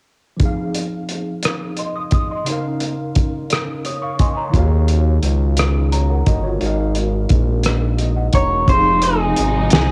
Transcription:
0.37 F3 C4, kick, closed hi-hat
0.41 D#4 G#4
0.45 F5
0.74 closed hi-hat
1.09 closed hi-hat
1.43 cross-stick, closed hi-hat
1.77 D#5 C6, closed hi-hat
1.96 D#6
2.11 D#6, kick, closed hi-hat
2.31 D#5 C6
2.44 C#3 C#4, closed hi-hat
2.48 D#4 A#4
2.52 F5
2.80 closed hi-hat
3.16 kick, closed hi-hat
3.50 cross-stick, closed hi-hat
3.85 C#5 D#6, closed hi-hat
4.02 F5 C#6
4.19 D#5 G#5 C6, kick, closed hi-hat
4.37 C#5 A#5
4.50 D#3 D#4 F4
4.54 D#2 G#4 C#5, kick, closed hi-hat
4.59 F#4 F5
4.88 closed hi-hat
5.23 C#2, closed hi-hat
5.57 cross-stick, closed hi-hat
5.92 C#5 A#5, closed hi-hat
6.10 A#4 F#5
6.26 G1 F#4 D#5, kick, closed hi-hat
6.43 F4 C#5
6.58 G#3 D#4 F#4, closed hi-hat
6.62 G#1 A#4 D#5
6.66 F5
6.95 closed hi-hat
7.29 A#1, kick, closed hi-hat
7.63 cross-stick, closed hi-hat
7.98 D#5, closed hi-hat
8.16 F#5
8.33 E1 C#5 A#5, kick, closed hi-hat
8.65 F1 C3 F3 G#3 C4 D#4, kick, closed hi-hat
8.69 D#4 G#4 C5
8.74 F5
9.02 G#4, closed hi-hat
9.36 G#1, closed hi-hat
9.70 C2 G#4, snare, closed hi-hat

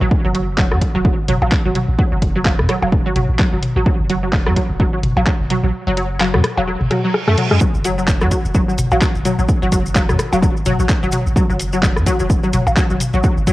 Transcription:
0.01 A1 F#3
0.11 kick
0.25 F#1 F#3
0.35 F#3, closed hi-hat
0.58 F#3, kick, clap
0.71 F#2 F#3, cross-stick
0.81 kick, closed hi-hat
0.95 E1 F#3
1.05 F#3, kick
1.28 F#1 F#3, closed hi-hat, high tom
1.42 A1 F#3, percussion blips
1.52 kick, clap
1.65 E1 F#3
1.75 F#3, closed hi-hat, high tom
1.88 A1
1.99 F#3, kick
2.12 F#1 F#3
2.22 kick, closed hi-hat
2.36 F#3
2.45 F#3, kick, clap, percussion blips
2.59 F#2, cross-stick, high tom
2.69 F#3, cross-stick, closed hi-hat
2.82 E1 F#3, percussion blips
2.92 kick
3.06 F#3
3.16 F#1 F#3, closed hi-hat, high tom
3.29 A1
3.39 F#3, kick, clap
3.53 E1 F#3
3.63 closed hi-hat, high tom
3.76 A1 F#3
3.86 F#3, kick
4.00 F#1
4.10 F#3, closed hi-hat
4.23 F#3
4.33 kick, clap
4.46 F#2 F#3, cross-stick
4.56 F#3, kick, closed hi-hat
4.70 E1
4.80 F#3, kick
4.93 F#3
5.03 F#1, closed hi-hat, high tom
5.17 A1 F#3, percussion blips
5.27 F#3, kick, clap
5.40 E1
5.50 F#3, closed hi-hat, high tom
5.63 A1 F#3
5.87 F#1 F#3
5.97 F#3, closed hi-hat
6.20 F#3, clap, percussion blips
6.34 F#2 F#3, cross-stick, high tom
6.44 cross-stick, closed hi-hat
6.57 E1 F#3, percussion blips
6.67 F#3, reverse cymbal
6.81 F#1, high tom
6.91 F#3, cross-stick, closed hi-hat, high tom
7.04 F#3
7.14 cross-stick
7.28 F#2 A3, cross-stick
7.38 F#3, closed hi-hat, high tom
7.51 F#2 G#3, cross-stick
7.61 F#3, kick, maracas
7.75 F#1, maracas
7.84 F#3, closed hi-hat, maracas
7.98 F#3, maracas
8.08 kick, clap, maracas
8.21 F#2 F#3, cross-stick, maracas
8.31 F#3, kick, closed hi-hat, maracas
8.45 E1, maracas
8.55 F#3, kick, maracas
8.68 F#3, maracas
8.78 F#1, closed hi-hat, high tom, maracas
8.91 A1 F#3, percussion blips, maracas
9.02 F#3, kick, clap, maracas
9.15 E1, maracas
9.25 F#3, closed hi-hat, high tom, maracas
9.39 A1 F#3, maracas
9.48 kick, maracas
9.62 F#1 F#3, maracas
9.72 F#3, kick, closed hi-hat, maracas
9.86 maracas
9.95 F#3, kick, clap, percussion blips, maracas
10.09 F#2 F#3, cross-stick, high tom, maracas
10.19 cross-stick, closed hi-hat, maracas
10.32 E1 F#3, percussion blips, maracas
10.42 F#3, kick, maracas
10.57 maracas
10.65 F#1 F#3, closed hi-hat, high tom, maracas
10.79 A1 F#3, maracas
10.89 kick, clap, maracas
11.03 E1 F#3, maracas
11.12 F#3, closed hi-hat, high tom, maracas
11.26 A1, maracas
11.36 F#3, kick, maracas
11.50 F#1 F#3, maracas
11.60 closed hi-hat, maracas
11.73 F#3, maracas
11.83 F#3, kick, clap, maracas
11.97 F#2, cross-stick, maracas
12.06 F#3, kick, closed hi-hat, maracas
12.19 E1 F#3, maracas
12.30 kick, maracas
12.43 F#3, maracas
12.53 F#1 F#3, closed hi-hat, high tom, maracas
12.67 A1, percussion blips, maracas
12.77 F#3, kick, clap, maracas
12.90 E1 F#3, maracas
13.00 closed hi-hat, high tom, maracas
13.13 A1 F#3, maracas
13.23 F#3, kick, maracas
13.37 F#1, maracas
13.47 F#3, kick, closed hi-hat, maracas

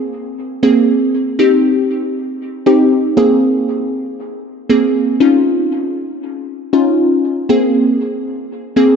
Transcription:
Already playing: A#3 C4 G#4
0.63 A#3 C4 G#4
1.39 C4 D#4 G4
2.66 C4 D#4 G4
3.17 A#3 C4 G#4
4.69 A#3 C4 G#4
5.20 C#4 D#4 F4
6.73 C#4 D#4 F4
7.49 A#3 C4 G#4
8.76 A#3 C4 G#4

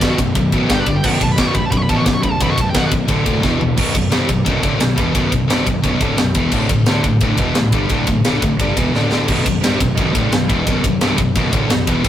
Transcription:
Already playing: B1 F#2 B2
0.01 B0 B1 F#2 B2, kick, snare, ride
0.10 F#4
0.18 B0 B1 F#2, kick, ride
0.35 B0 B1 F#2, kick, ride
0.52 A1 B1 F#2 B2, kick, ride
0.70 G1 G2 D3 G3 G5, kick, snare, ride
0.79 B4
0.86 G1 G2 D3 D5, kick, ride
0.96 G5
1.04 B0 B1 F#2 B2 F#5, kick, crash
1.14 G5
1.21 B0 B1 F#2 A5, kick, ride
1.32 B5
1.38 B0 B1 F#2 B2 D6, kick, snare, ride
1.47 C#6
1.54 B0 B1 F#2 B5, kick, ride
1.65 A5
1.71 B0 B1 F#2 B5, kick, ride
1.77 C#6
1.83 B5
1.89 A1 B1 F#2 B2 A5, kick, ride
1.96 C#6
2.04 B0 B1 F#2 D6, kick, snare, ride
2.14 C#6
2.23 B1 F#2 B5, kick, ride
2.31 A5
2.41 B0 B1 F#2 B2 B5, kick, ride
2.51 C#6
2.58 B0 B1 F#2 A5, kick, ride
2.70 G5
2.74 B0 B1 F#2 B2 F#5, kick, snare, ride
2.86 B4
2.91 B0 B1 F#2, kick, ride
3.08 D1 D2 A2 D3, kick, ride
3.25 B0 D2 A2 D3, kick, ride
3.43 E1 E2 B2 E3, kick, snare
3.60 A#1 E2 B2, floor tom
3.77 B0 B1 F#2 B2, kick, crash
3.95 B0 B1 F#2, kick, ride
4.11 C1 C2 G2 C3, snare, ride
4.28 B0 B1 F#2, kick, ride
4.45 B0 B1 F#2 B2, kick, ride
4.63 D1 D2 A2 D3, kick, ride
4.79 B0 B1 F#2, snare, ride
4.95 E1 E2 B2 E3, kick, ride
5.14 B0 B1 F#2 B2, kick, ride
5.31 B0 B1 F#2, kick, ride
5.48 C1 C2 G2 C3, snare, ride
5.66 B0 B1 F#2, kick, ride
5.82 B0 B1 F#2 B2, kick, ride
6.00 D1 D2 A2 D3, kick, ride
6.18 B0 B1 F#2, snare, ride
6.35 E1 E2 B2 E3, kick, ride
6.52 D1 D2 A2 D3, kick, crash
6.69 D1 D2 A2, kick, ride
6.86 D1 D2 A2 D3, snare, ride
7.04 D1 D2 A2, kick, ride
7.21 D1 D2 A2 D3, kick, ride
7.37 E1 E2 B2 E3, kick, ride
7.55 D1 D2 A2, snare, ride
7.72 G1 G2 D3 G3, kick, ride
7.89 D1 D2 A2 D3, kick, ride
8.07 D1 D2 A2, kick, ride
8.24 D1 D2 A2 D3, snare, ride
8.42 D1 D2 A2, kick, ride
8.59 G1 G2 D3 G3, kick, ride
8.77 E1 E2 B2 E3, kick, ride
8.94 D1 D2 A2 D3, snare
9.11 D1 D2 A2 D3, snare
9.28 B0 B1 F#2 B2, kick, crash
9.46 B0 B1 F#2, kick, ride
9.63 C1 C2 G2 C3, snare, ride
9.80 B0 B1 F#2, kick, ride
9.97 B0 B1 F#2 B2, kick, ride
10.15 D1 D2 A2 D3, kick, ride
10.32 B0 B1 F#2, snare, ride
10.49 E1 E2 B2 E3, kick, ride
10.66 B0 B1 F#2 B2, kick, ride
10.84 B0 B1 F#2, kick, ride
11.01 C1 C2 G2 C3, snare, ride
11.18 B0 B1 F#2, kick, ride
11.35 B0 B1 F#2 B2, kick, ride
11.53 D1 D2 A2 D3, kick, ride
11.69 B0 B1 F#2, snare, ride
11.87 E1 E2 B2 E3, kick, ride
12.04 A1 A2 E3 A3, kick, crash

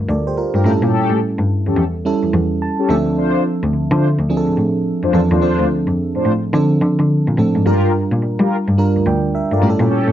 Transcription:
Already playing: G3 D4 F4 A#4
0.09 D2 A4 D5
0.27 G4 C5
0.37 F4 A#4
0.54 G2 D4 F4 G4 A#4
0.65 A2 G3 C#4 E4 A4
0.82 A#2 C#4 G4 A4
0.93 C#4 G4 A4
1.10 A2
1.39 G2
1.67 E2 C#4 G4 A4
1.77 E2
2.05 G3 C#4 E4 A4
2.23 E2
2.33 E2
2.62 A5
2.79 C#4 G4 A4
2.89 D2 F3 C4 D4 A4 E5
3.17 D4 F4 C5
3.63 D2
3.73 D3
3.91 D3 D4 F4 C5
4.19 D2
4.29 F3 C4 D4 G#4
4.37 A4
4.47 A2
4.57 A2
5.03 F2 D4 F4 C5
5.13 E2 F3 C4 D4 A4
5.31 D#2 D4 F4 C5
5.41 F3 C4 D4 F4 A4 C5
5.59 D2
5.87 F2
6.15 A2 D4 F4 C5
6.26 A2
6.54 D3 F3 C4 D4 A4
6.82 D3
6.99 D3
7.27 A#2
7.38 A2 F3 C4 D4 A4
7.55 G#2
7.65 G2 G3 D4 F4 G4 A#4
8.12 A#2
8.22 G3
8.39 G3 F4 G4 A#4
8.68 G2
8.78 G3 D4 F4 A#4
8.96 D2
9.06 D2 D5 G5
9.35 A#4 E5
9.51 G2 F4 G4 A4 A#4 D5
9.62 A2 G3 C#4 E4 G4
9.70 A4
9.79 A#2 C#4 G4 A4
9.90 C#4 G4 A4
10.08 A2

